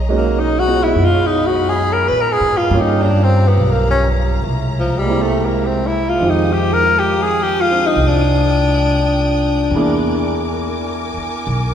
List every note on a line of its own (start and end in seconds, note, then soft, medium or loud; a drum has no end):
0.00 0.91 B1 medium
0.00 2.65 G#4 medium
0.00 2.66 C#5 medium
0.00 2.67 D#5 medium
0.00 0.90 A#5 medium
0.09 2.71 G#3 medium
0.09 2.71 A#3 soft
0.09 2.71 C#4 soft
0.09 0.66 D#4 soft
0.09 2.72 F#4 medium
0.17 0.41 A#3 medium
0.39 0.61 D#4 medium
0.59 0.85 F#4 loud
0.66 2.71 B3 soft
0.66 2.71 D#4 soft
0.66 2.72 F4 soft
0.66 2.72 G#4 soft
0.83 1.06 E4 medium
0.95 2.08 F#2 medium
0.95 2.68 B5 medium
1.04 1.28 F4 medium
1.26 1.48 D#4 medium
1.46 1.71 F#4 medium
1.69 1.94 G#4 medium
1.92 2.10 A#4 medium
2.08 2.38 A#2 medium
2.08 2.22 B4 medium
2.21 2.34 A#4 medium
2.32 2.59 G#4 medium
2.41 2.68 G#2 medium
2.57 2.82 F4 medium
2.66 4.42 G4 medium
2.66 4.42 F5 medium
2.66 6.16 A#5 medium
2.71 3.54 G2 medium
2.71 4.46 G3 medium
2.71 4.47 A#3 medium
2.71 4.48 C#4 medium
2.75 4.48 F4 medium
2.75 4.49 G4 medium
2.81 3.03 D#4 medium
3.02 3.25 D4 medium
3.24 3.50 C4 medium
3.48 3.73 B3 medium
3.57 4.41 B1 medium
3.71 3.90 A#3 medium
3.91 4.07 C#4 medium
4.44 6.16 C2 medium
4.44 9.69 G#3 medium
4.44 6.20 E5 medium
4.80 5.00 F3 medium
4.99 5.24 G3 medium
4.99 6.18 G#3 soft
5.04 6.22 A#3 soft
5.04 6.20 C4 soft
5.09 6.24 E4 soft
5.09 6.24 G4 soft
5.22 5.47 A3 medium
5.45 5.68 A#3 medium
5.67 5.88 C4 medium
5.87 6.11 E4 medium
6.09 6.31 F4 medium
6.18 7.93 F2 medium
6.18 9.72 G#3 medium
6.18 7.68 C4 soft
6.18 7.94 F5 medium
6.18 9.68 D#6 medium
6.22 9.73 D#3 medium
6.22 7.71 F4 soft
6.22 9.75 G4 medium
6.30 6.54 D#4 medium
6.53 6.75 G4 medium
6.73 7.00 A#4 loud
6.99 7.23 G4 medium
7.22 7.44 G#4 medium
7.42 7.63 G4 medium
7.61 7.88 F4 medium
7.70 9.74 C4 soft
7.70 9.74 D4 soft
7.70 9.75 F4 soft
7.87 8.09 D#4 medium
7.94 9.68 C2 medium
7.94 9.69 G5 medium
8.07 10.65 D4 medium
9.71 11.13 E2 medium
9.71 11.74 A#3 medium
9.71 11.74 A#4 medium
9.71 11.74 G#5 medium
9.71 11.74 D6 medium
9.75 11.74 B3 soft
9.75 11.74 D4 soft
9.75 11.74 E4 soft
9.75 11.74 G#4 medium
11.17 muted upright bass stroke soft
11.47 11.74 B1 medium